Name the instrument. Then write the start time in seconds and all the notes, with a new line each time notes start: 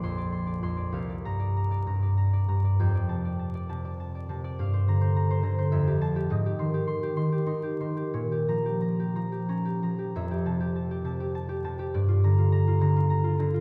harp
Already playing: A#1 D5 F5 A#5
0.03 F2 C6
0.18 D5
0.32 C6
0.47 D5
0.63 F2 C6
0.77 D5
0.92 C2 F5
1.09 D5
1.25 G2 A#5
1.40 D5
1.57 A#5
1.71 D5
1.87 G2 A#5
2.03 D5
2.17 A#5
2.33 D5
2.48 G2 A#5
2.64 D5
2.79 F2 G5
2.95 D5
3.09 C3 A5
3.25 D5
3.39 A5
3.55 D5
3.69 C3 A5
3.85 D5
4.00 A5
4.15 D5
4.29 C3 A5
4.44 D5
4.59 G2 F5
4.74 C5
4.88 D3 A#5
5.01 C5
5.16 A#5
5.31 C5
5.43 D3 A#5
5.58 C5
5.72 F2 E5
5.87 G4
6.01 A5
6.16 G4
6.30 G#2 D#5
6.46 G4
6.59 D#3 C6
6.74 G4
6.87 C6
7.03 G4
7.17 D#3 C6
7.32 G4
7.46 D#4 C6
7.63 G4
7.80 D#3 C6
7.97 G4
8.14 A#2 C#5
8.32 G4
8.48 F3 A#5
8.66 G4
8.81 A#5
9.00 G4
9.16 F3 A#5
9.32 G4
9.49 C#4 A#5
9.65 G4
9.82 F3 A#5
9.99 G4
10.16 F2 E5
10.31 G4
10.45 C3 A5
10.60 G4
10.76 A5
10.91 G4
11.05 C3 A5
11.20 G4
11.35 A5
11.49 G4
11.64 C3 A5
11.79 G4
11.94 G2 D5
12.08 F4
12.24 D3 A#5
12.38 F4
12.52 A#5
12.68 F4
12.81 D3 A#5
12.96 F4
13.10 A#5
13.24 F4
13.39 D3 A#5
13.54 F4